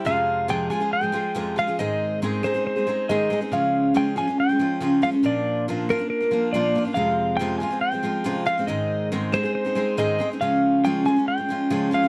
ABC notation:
X:1
M:4/4
L:1/16
Q:1/4=139
K:Fm
V:1 name="Pedal steel guitar"
f4 g2 a2 g6 f2 | e4 z2 c2 c4 e3 z | f4 g2 a2 g6 f2 | =d4 z2 B2 B4 d3 z |
f4 g2 a2 g6 f2 | e4 z2 c2 c4 e3 z | f4 g2 a2 g6 f2 |]
V:2 name="Steel-string acoustic guitar"
[F,,C,F,A,FA]4 [F,,C,F,A,FA]2 [F,A,FA] [F,A,FA]2 [F,A,FA] [F,A,FA]2 [F,,C,F,A,FA]2 [F,A,FA] [F,A,FA] | [A,,E,A,CEA]4 [A,,E,A,CEA]2 [A,CEA] [A,CEA]2 [A,CEA] [A,CEA]2 [A,,E,A,CEA]2 [A,CEA] [A,CEA] | [D,F,A,DF]4 [D,F,A,DF]2 [F,A,DF] [A,DF]2 [A,DF] [F,A,DF]2 [D,F,A,DF]2 [F,A,DF] [A,DF] | [B,,F,B,=DF]4 [B,,F,B,DF]2 [F,B,DF] [B,DF]2 [B,DF] [F,B,DF]2 [B,,F,B,DF]2 [F,B,DF] [B,DF] |
[F,,C,F,A,CF]4 [F,,C,F,A,CF]2 [F,A,CF] [F,A,CF]2 [F,A,CF] [F,A,CF]2 [F,,C,F,A,CF]2 [F,A,CF] [F,A,CF] | [A,,E,A,CEA]4 [A,,E,A,CEA]2 [A,CEA] [A,CEA]2 [A,CEA] [A,CEA]2 [A,,E,A,CEA]2 [A,CEA] [A,CEA] | [D,F,A,DF]4 [D,F,A,DF]2 [F,A,DF] [A,DF]2 [A,DF] [F,A,DF]2 [D,F,A,DF]2 [F,A,DF] [DF] |]